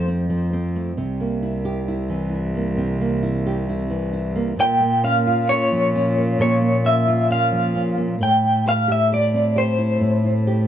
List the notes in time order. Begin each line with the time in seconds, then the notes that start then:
Already playing: F2 F3 A3 A4 C5
0.08 C4
0.30 F3
0.53 C4
0.76 A3
0.97 C2 C3
1.20 A#3
1.43 E4
1.65 G4
1.88 E4
2.09 E3
2.32 E4
2.55 A#3
2.77 C3
3.01 A#3
3.23 E4
3.46 G4
3.69 E4
3.90 E3
4.13 E4
4.35 A#3
4.57 A#2 G5
4.80 A#3
5.04 C#4 F5
5.27 F4
5.49 C#4 C#5
5.72 F3
5.95 C#4
6.17 A#3
6.39 A#2 C#5
6.62 A#3
6.84 C#4 E5
7.08 F4
7.30 C#4 F5
7.52 F3
7.75 C#4
7.98 A#3
8.19 A2
8.23 G5
8.44 E4
8.66 G4 F5
8.88 G4 E5
9.12 G4 D5
9.34 C4
9.56 G4 C5
9.78 E4
10.00 A2
10.24 E4
10.47 G4